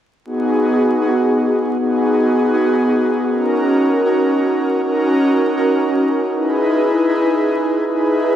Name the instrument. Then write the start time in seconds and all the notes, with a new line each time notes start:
analog synth pad
0.25 B3 D#4 F#4 G#4
1.01 B3 D#4 F#4 G#4
1.77 B3 D#4 F#4 G#4
2.54 B3 D#4 F#4 G#4
3.29 C#4 D#4 F#4 A#4
4.06 C#4 D#4 F#4 A#4
4.82 C#4 D#4 F#4 A#4
5.57 C#4 D#4 F#4 A#4
6.34 D#4 E4 G#4 B4
7.09 D#4 E4 G#4 B4
7.85 D#4 E4 G#4 B4